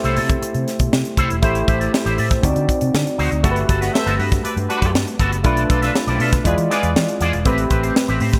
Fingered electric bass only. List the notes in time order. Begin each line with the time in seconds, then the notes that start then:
0.04 C2
0.17 C3
0.42 muted fingered electric bass stroke
0.55 C3
0.80 B2
0.93 C3
1.18 C2
1.31 E1
1.43 A1
1.68 A1
2.06 A1
2.19 A2
2.43 D2
2.56 D3
2.82 C3
2.94 D3
3.19 D2
3.32 D2
3.44 G1
3.69 G1
4.06 G1
4.19 G2
4.45 muted fingered electric bass stroke
4.57 G2
4.82 F#2
4.94 G2
5.19 G1
5.32 F#1
5.45 B1
5.70 B1
6.07 B1
6.20 B2
6.45 E2
6.58 E3
6.83 E2
6.96 E3
7.21 E2
7.33 E1
7.46 A1
7.70 A1
8.09 A1
8.21 A2